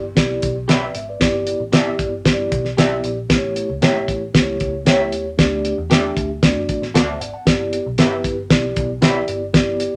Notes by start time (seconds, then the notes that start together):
Already playing: G1
0.15 B1 B3 E4 G4 D5, kick, snare, closed hi-hat
0.42 B1, kick, closed hi-hat
0.68 G4 B4 D5 E5, snare, closed hi-hat
0.95 G#1 E5, closed hi-hat
1.09 B4 D5
1.20 G1 B3 E4 G4 D5, kick, snare, closed hi-hat
1.47 closed hi-hat
1.60 A1
1.72 B3 E4 G4 D5 E5, snare, closed hi-hat
1.99 G1, kick, closed hi-hat
2.25 G2 B3 E4 G4 C5, kick, snare, closed hi-hat
2.33 D5
2.52 B1, kick, closed hi-hat
2.65 snare
2.77 B1 B3 E4 G4 D5 E5, snare, closed hi-hat
3.04 A#1, closed hi-hat
3.29 A1 A3 E4 G4 C5, kick, snare, closed hi-hat
3.38 C#5
3.56 closed hi-hat
3.69 C#2
3.82 A1 A3 E4 G4 C#5 E5, snare, closed hi-hat
4.08 A1, kick, closed hi-hat
4.34 C#2 A3 E4 G4 C5, kick, snare, closed hi-hat
4.42 C#5
4.60 C#2, kick, closed hi-hat
4.85 A3 E4 G4 C5 C#5 E5, snare, closed hi-hat
4.94 C#5
5.12 D#2, closed hi-hat
5.37 D2 A3 D4 G4 D5, kick, snare, closed hi-hat
5.65 closed hi-hat
5.78 E2
5.90 A3 D4 G4 A4 D5 E5, snare, closed hi-hat
6.17 D2, kick, closed hi-hat
6.42 D2 A3 D4 F4 D5, kick, snare, closed hi-hat
6.50 F#4
6.56 F#1
6.69 kick, closed hi-hat
6.82 A1, snare
6.94 D2 F#4 A4 D5, snare, closed hi-hat
7.08 C5 E5
7.20 G#1 D5 F#5, closed hi-hat
7.34 F#5 A5
7.45 G1 B3 E4 G4 D5, kick, snare, closed hi-hat
7.73 closed hi-hat
7.86 B1
7.98 G1 B3 E4 G4 A#4 B4 E5, snare, closed hi-hat
8.06 B4
8.24 G1, kick, closed hi-hat
8.50 B1 A3 E4 G4 D5, kick, snare, closed hi-hat
8.55 B3
8.76 B1, kick, closed hi-hat
9.01 B3 E4 G4 B4 C5 E5, snare, closed hi-hat
9.09 D5
9.28 G1, closed hi-hat
9.53 B3 E4 G4 D5, kick, snare, closed hi-hat
9.80 closed hi-hat